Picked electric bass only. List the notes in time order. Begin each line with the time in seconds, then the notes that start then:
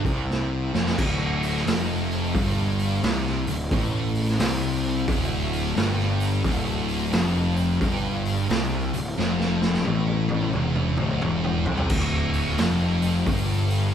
0.05 C2
0.74 F1
0.98 D1
1.67 F1
2.35 G1
3.03 C2
3.47 D1
3.71 A1
4.40 C2
5.08 D1
5.76 G1
6.44 D1
7.13 F1
7.81 G1
8.50 C2
8.94 D1
9.18 F1
9.87 A1
10.55 E1
10.99 D1
11.22 E1
11.66 C2
11.90 D1
12.59 F1
13.26 G1